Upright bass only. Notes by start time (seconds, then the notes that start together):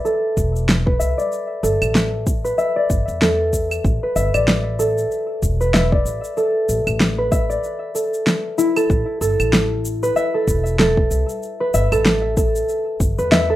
0.37 E1
1.00 C2
1.63 G1
1.82 A1
2.90 G1
3.08 E2
3.84 A1
4.16 G1
4.34 A1
5.43 E1
6.05 A1
6.69 A1
6.87 A1
8.90 A1
9.21 G1
9.39 A1
10.47 E1
11.11 C2
11.74 G1
11.92 A1
13.00 G1
13.19 E2